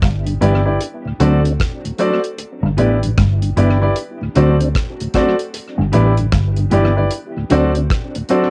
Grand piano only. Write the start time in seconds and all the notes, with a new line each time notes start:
0.41 E4 G4 B4 D5
0.66 E4 G4 B4 D5
1.20 F#4 A4 C5 D5
1.99 F#4 A4 C5 D5
2.78 E4 G4 B4 D5
3.57 E4 G4 B4 D5
3.81 E4 G4 B4 D5
4.36 F#4 A4 C5 D5
5.15 F#4 A4 C5 D5
5.93 E4 G4 B4 D5
6.72 E4 G4 B4 D5
6.97 E4 G4 B4 D5
7.51 F#4 A4 C5 D5
8.30 F#4 A4 C5 D5